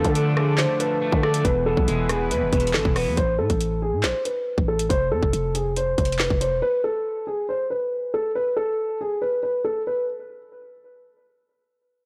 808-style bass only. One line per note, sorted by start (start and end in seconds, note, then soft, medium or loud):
0.05 0.67 D3 loud
1.12 1.43 D3 loud
1.45 1.76 E1 loud
1.77 1.88 B1 loud
1.88 2.33 E1 loud
2.31 2.44 E2 loud
2.42 2.52 E1 loud
2.53 2.76 E1 loud
2.74 2.85 G#1 loud
2.85 3.08 E1 loud
3.07 3.17 E2 loud
3.17 3.41 A1 loud
3.39 3.49 A2 medium
3.50 3.95 A1 loud
3.93 4.05 A2 medium
4.04 4.14 A1 medium
4.58 4.89 A1 loud
4.90 5.13 F1 loud
5.12 5.22 F2 medium
5.23 5.33 F1 loud
5.33 5.95 F1 loud
5.98 6.29 F1 loud
6.30 6.53 F1 loud
6.52 6.62 E1 loud